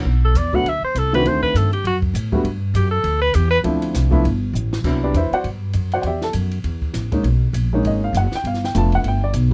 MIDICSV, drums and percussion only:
0, 0, Header, 1, 2, 480
1, 0, Start_track
1, 0, Key_signature, 1, "major"
1, 0, Tempo, 299401
1, 85, Time_signature, 4, 2, 24, 8
1, 15285, End_track
2, 0, Start_track
2, 0, Title_t, "Drums"
2, 563, Note_on_c, 9, 44, 58
2, 563, Note_on_c, 9, 51, 71
2, 723, Note_off_c, 9, 44, 0
2, 723, Note_off_c, 9, 51, 0
2, 851, Note_on_c, 9, 36, 53
2, 1011, Note_off_c, 9, 36, 0
2, 1058, Note_on_c, 9, 51, 54
2, 1218, Note_off_c, 9, 51, 0
2, 1529, Note_on_c, 9, 44, 55
2, 1529, Note_on_c, 9, 51, 66
2, 1690, Note_off_c, 9, 44, 0
2, 1690, Note_off_c, 9, 51, 0
2, 1828, Note_on_c, 9, 51, 45
2, 1988, Note_off_c, 9, 51, 0
2, 2012, Note_on_c, 9, 51, 60
2, 2173, Note_off_c, 9, 51, 0
2, 2290, Note_on_c, 9, 36, 54
2, 2450, Note_off_c, 9, 36, 0
2, 2492, Note_on_c, 9, 44, 61
2, 2492, Note_on_c, 9, 51, 67
2, 2652, Note_off_c, 9, 44, 0
2, 2652, Note_off_c, 9, 51, 0
2, 2770, Note_on_c, 9, 51, 48
2, 2931, Note_off_c, 9, 51, 0
2, 2966, Note_on_c, 9, 51, 55
2, 3126, Note_off_c, 9, 51, 0
2, 3243, Note_on_c, 9, 36, 65
2, 3403, Note_off_c, 9, 36, 0
2, 3444, Note_on_c, 9, 44, 65
2, 3444, Note_on_c, 9, 51, 74
2, 3604, Note_off_c, 9, 44, 0
2, 3604, Note_off_c, 9, 51, 0
2, 3723, Note_on_c, 9, 36, 60
2, 3884, Note_off_c, 9, 36, 0
2, 3922, Note_on_c, 9, 51, 62
2, 4082, Note_off_c, 9, 51, 0
2, 4403, Note_on_c, 9, 44, 51
2, 4403, Note_on_c, 9, 51, 69
2, 4564, Note_off_c, 9, 44, 0
2, 4564, Note_off_c, 9, 51, 0
2, 4870, Note_on_c, 9, 51, 59
2, 5030, Note_off_c, 9, 51, 0
2, 5349, Note_on_c, 9, 44, 54
2, 5349, Note_on_c, 9, 51, 70
2, 5509, Note_off_c, 9, 44, 0
2, 5509, Note_off_c, 9, 51, 0
2, 5837, Note_on_c, 9, 51, 62
2, 5997, Note_off_c, 9, 51, 0
2, 6124, Note_on_c, 9, 51, 54
2, 6285, Note_off_c, 9, 51, 0
2, 6320, Note_on_c, 9, 38, 40
2, 6324, Note_on_c, 9, 44, 64
2, 6324, Note_on_c, 9, 51, 67
2, 6481, Note_off_c, 9, 38, 0
2, 6484, Note_off_c, 9, 44, 0
2, 6484, Note_off_c, 9, 51, 0
2, 6608, Note_on_c, 9, 36, 58
2, 6768, Note_off_c, 9, 36, 0
2, 6813, Note_on_c, 9, 51, 58
2, 6974, Note_off_c, 9, 51, 0
2, 7296, Note_on_c, 9, 44, 59
2, 7456, Note_off_c, 9, 44, 0
2, 7580, Note_on_c, 9, 38, 66
2, 7740, Note_off_c, 9, 38, 0
2, 7760, Note_on_c, 9, 36, 64
2, 7762, Note_on_c, 9, 49, 67
2, 7921, Note_off_c, 9, 36, 0
2, 7923, Note_off_c, 9, 49, 0
2, 8245, Note_on_c, 9, 44, 56
2, 8245, Note_on_c, 9, 51, 62
2, 8406, Note_off_c, 9, 44, 0
2, 8406, Note_off_c, 9, 51, 0
2, 8544, Note_on_c, 9, 51, 45
2, 8704, Note_off_c, 9, 51, 0
2, 8723, Note_on_c, 9, 51, 54
2, 8883, Note_off_c, 9, 51, 0
2, 9192, Note_on_c, 9, 44, 51
2, 9192, Note_on_c, 9, 51, 65
2, 9352, Note_off_c, 9, 44, 0
2, 9352, Note_off_c, 9, 51, 0
2, 9485, Note_on_c, 9, 51, 43
2, 9646, Note_off_c, 9, 51, 0
2, 9668, Note_on_c, 9, 51, 57
2, 9829, Note_off_c, 9, 51, 0
2, 9964, Note_on_c, 9, 38, 50
2, 10125, Note_off_c, 9, 38, 0
2, 10151, Note_on_c, 9, 44, 54
2, 10151, Note_on_c, 9, 51, 70
2, 10311, Note_off_c, 9, 44, 0
2, 10311, Note_off_c, 9, 51, 0
2, 10444, Note_on_c, 9, 51, 46
2, 10605, Note_off_c, 9, 51, 0
2, 10644, Note_on_c, 9, 51, 57
2, 10805, Note_off_c, 9, 51, 0
2, 10930, Note_on_c, 9, 36, 49
2, 11090, Note_off_c, 9, 36, 0
2, 11121, Note_on_c, 9, 38, 36
2, 11124, Note_on_c, 9, 44, 55
2, 11124, Note_on_c, 9, 51, 67
2, 11281, Note_off_c, 9, 38, 0
2, 11285, Note_off_c, 9, 44, 0
2, 11285, Note_off_c, 9, 51, 0
2, 11413, Note_on_c, 9, 36, 52
2, 11415, Note_on_c, 9, 51, 46
2, 11573, Note_off_c, 9, 36, 0
2, 11575, Note_off_c, 9, 51, 0
2, 11609, Note_on_c, 9, 51, 60
2, 11769, Note_off_c, 9, 51, 0
2, 12090, Note_on_c, 9, 44, 51
2, 12090, Note_on_c, 9, 51, 69
2, 12250, Note_off_c, 9, 44, 0
2, 12250, Note_off_c, 9, 51, 0
2, 12579, Note_on_c, 9, 51, 53
2, 12740, Note_off_c, 9, 51, 0
2, 13055, Note_on_c, 9, 44, 53
2, 13055, Note_on_c, 9, 51, 68
2, 13215, Note_off_c, 9, 44, 0
2, 13215, Note_off_c, 9, 51, 0
2, 13334, Note_on_c, 9, 38, 44
2, 13494, Note_off_c, 9, 38, 0
2, 13541, Note_on_c, 9, 51, 62
2, 13691, Note_on_c, 9, 38, 29
2, 13701, Note_off_c, 9, 51, 0
2, 13852, Note_off_c, 9, 38, 0
2, 13856, Note_on_c, 9, 38, 48
2, 14016, Note_off_c, 9, 38, 0
2, 14023, Note_on_c, 9, 44, 51
2, 14023, Note_on_c, 9, 51, 71
2, 14183, Note_off_c, 9, 44, 0
2, 14183, Note_off_c, 9, 51, 0
2, 14301, Note_on_c, 9, 51, 47
2, 14462, Note_off_c, 9, 51, 0
2, 14494, Note_on_c, 9, 51, 56
2, 14654, Note_off_c, 9, 51, 0
2, 14964, Note_on_c, 9, 44, 65
2, 14964, Note_on_c, 9, 51, 69
2, 15125, Note_off_c, 9, 44, 0
2, 15125, Note_off_c, 9, 51, 0
2, 15285, End_track
0, 0, End_of_file